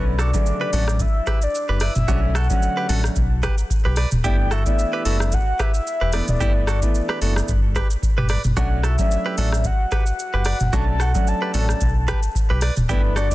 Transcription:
Already playing: B1 D3 F#3 A3 C#4 B4
0.19 F#4 A4 D5, cross-stick, shaker
0.34 C#3 D3 F#3 A3, kick, shaker
0.46 shaker
0.61 G4 B4
0.73 A1 D3 F#3 A3 C#4 F#4 A4, open hi-hat, shaker
0.88 cross-stick, shaker
0.99 E5, kick, shaker
1.27 G4 B4, kick, cross-stick, shaker
1.42 D5, shaker
1.55 shaker
1.69 F#1 G4 B4
1.80 B4 D5 E5, cross-stick, open hi-hat, shaker
1.95 F#1, mid tom, shaker
2.08 B1 D3 F#3 A3 C#4 D4 F#4, kick, shaker
2.35 F#4 A4 F#5, cross-stick, shaker
2.50 D3 F#3 A3 C#4, kick, shaker
2.63 shaker
2.77 G4 B4
2.89 A1 D3 F#3 A3 C#4 F#4 A4, open hi-hat, shaker
3.04 cross-stick, shaker
3.16 B1, kick, shaker
3.43 G4 B4, kick, cross-stick, shaker
3.58 shaker
3.70 kick, shaker
3.85 B1 G4 B4
3.96 B4 D5, cross-stick, open hi-hat, shaker
4.11 D1, mid tom, shaker
4.24 G1 E3 A3 B3 D4 E4 G4 G5, kick, shaker
4.51 F#4 A4 E5, cross-stick, shaker
4.66 E3 A3 B3 D4, kick, shaker
4.79 shaker
4.93 G4 B4
5.05 F#1 E3 A3 B3 D4 F#4 A4, open hi-hat, shaker
5.20 cross-stick, shaker
5.32 F#5, kick, shaker
5.59 G4 B4 E5, kick, cross-stick, shaker
5.74 shaker
5.87 shaker
6.01 E1 G4 B4
6.13 E3 A3 B3 D4 B4 D5, cross-stick, open hi-hat, shaker
6.28 D1 D5, mid tom, shaker
6.40 G1 E3 A3 B3 D4 E4 G4, kick, shaker
6.67 F#4 A4, cross-stick, shaker
6.82 E3 A3 B3 D4, kick, shaker
6.95 shaker
7.09 G4 B4, cross-stick
7.21 F#1 E3 A3 B3 D4 F#4 A4, open hi-hat, shaker
7.36 cross-stick, shaker
7.48 G1, kick, shaker
7.76 G4 B4, kick, cross-stick, shaker
7.90 shaker
8.03 kick, shaker
8.18 G1 G4 B4, mid tom
8.29 B4 D5, cross-stick, open hi-hat, shaker
8.44 F#1, mid tom, shaker
8.57 B1 F#3 A3 C#4 D4 F#4 F#5, kick, shaker
8.83 F#4 A4 E5, cross-stick, shaker
8.98 F#3 A3 C#4 D4, kick, shaker
9.11 shaker
9.26 G4 B4
9.38 A1 F#3 A3 C#4 D4 F#4 A4, open hi-hat, shaker
9.52 cross-stick, shaker
9.64 F#5, kick, shaker
9.92 G4 B4 F#5, kick, cross-stick, shaker
10.06 shaker
10.19 shaker
10.34 F#1 G4 B4
10.45 B4 D5, cross-stick, open hi-hat, shaker
10.60 F#1, mid tom, shaker
10.73 B1 F#3 A3 C#4 D4 F#4 A5, kick, shaker
11.00 F#4 A4 F#5, cross-stick, shaker
11.15 F#3 A3 C#4 D4, kick, shaker
11.27 A5, shaker
11.42 G4 B4
11.54 A1 F#3 A3 C#4 D4 F#4 A4, open hi-hat, shaker
11.69 cross-stick, shaker
11.81 B1, kick, shaker
12.08 G4 B4, kick, cross-stick, shaker
12.23 shaker
12.35 kick, shaker
12.50 B1 G4 B4
12.61 B4 D5, cross-stick, open hi-hat, shaker
12.77 D1, mid tom, shaker
12.89 G1 E3 A3 B3 D4 E4 G4 B4, kick, shaker
13.16 F#4 A4 D5, cross-stick, shaker
13.31 E3 A3 B3 D4, kick, shaker

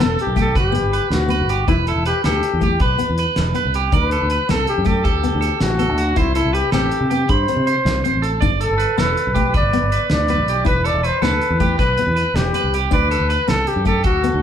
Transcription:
0.00 E1 B3 A4
0.19 G4, closed hi-hat
0.27 B1
0.36 A3 G4, kick, snare, closed hi-hat
0.41 A4
0.55 G1 G4 B4, kick, closed hi-hat
0.72 B3, closed hi-hat
0.82 G1
0.93 B4, closed hi-hat
1.10 D2 F#4, snare, closed hi-hat
1.28 B3 B4, closed hi-hat
1.39 G1
1.49 G4, closed hi-hat
1.68 E1 E4 B4, kick, closed hi-hat
1.87 E4 A4, closed hi-hat
1.96 E1
2.06 G4 B4, closed hi-hat
2.24 D2 B3 G4 A4, snare, closed hi-hat
2.43 closed hi-hat
2.53 E2
2.61 A3 G4, kick, closed hi-hat
2.80 B1 B4, kick, closed hi-hat
2.98 B3, closed hi-hat
3.09 E2
3.18 B4, closed hi-hat
3.36 E1, snare, closed hi-hat
3.54 B3 B4, closed hi-hat
3.65 C2
3.74 G4, closed hi-hat
3.92 D2 D4 B4 D5, kick, closed hi-hat
4.11 A4, closed hi-hat
4.22 D2
4.30 B4, closed hi-hat
4.49 C2 B3 A4, snare, closed hi-hat
4.67 G4, closed hi-hat
4.78 F#2
4.85 A3 G4 A4, kick, snare, closed hi-hat
5.04 D2 G4 A4, kick, closed hi-hat
5.23 B3, closed hi-hat
5.35 D2
5.41 A4, closed hi-hat
5.61 A1 F#4, snare, closed hi-hat
5.79 B3 A4, closed hi-hat
5.89 D2
5.98 F#4, closed hi-hat
6.16 C2 E4 C5, kick, closed hi-hat
6.35 E4 A4, closed hi-hat
6.45 C2
6.53 G4 B4, closed hi-hat
6.72 A1 C4 G4 A4, snare, closed hi-hat
6.91 closed hi-hat
7.01 C3
7.10 B3 G4, closed hi-hat
7.29 G2 C5 B5, kick, closed hi-hat
7.48 C4, closed hi-hat
7.56 C3
7.67 C5, closed hi-hat
7.85 C2, snare, closed hi-hat
8.04 C4 C5, closed hi-hat
8.13 A1
8.22 A4, closed hi-hat
8.41 G1 D4 D5, kick, closed hi-hat
8.60 A4, closed hi-hat
8.69 G1
8.78 B4, closed hi-hat
8.98 E1 B3 A4 B4, snare, closed hi-hat
9.17 closed hi-hat
9.27 B1
9.34 A3 G4, kick, closed hi-hat
9.54 G1 B4 D5, kick, closed hi-hat
9.73 B3, closed hi-hat
9.82 G1
9.92 B4, closed hi-hat
10.10 D2 D5, snare, closed hi-hat
10.28 B3 B4, closed hi-hat
10.38 B1
10.48 G4, closed hi-hat
10.65 E1 E4 B4, kick, closed hi-hat
10.84 A4 D5, closed hi-hat
10.94 E1
11.03 B4 C5, closed hi-hat
11.22 D2 B3 A4 B4, snare, closed hi-hat
11.42 closed hi-hat
11.50 E2
11.60 A3 G4, kick, closed hi-hat
11.79 B1 B4, kick, closed hi-hat
11.97 B3, closed hi-hat
12.07 E2
12.16 B4, closed hi-hat
12.34 E1 G4, snare, closed hi-hat
12.54 B3 B4, closed hi-hat
12.64 C2
12.74 G4, closed hi-hat
12.91 D2 D4 B4 D5, kick, closed hi-hat
13.11 A4, closed hi-hat
13.20 D2
13.30 B4, closed hi-hat
13.48 C2 B3 A4, snare, closed hi-hat
13.67 G4, closed hi-hat
13.76 F#2
13.85 A3 G4 A4, kick, closed hi-hat
14.04 D2 F#4 A4, kick, closed hi-hat
14.24 B3, closed hi-hat
14.34 D2

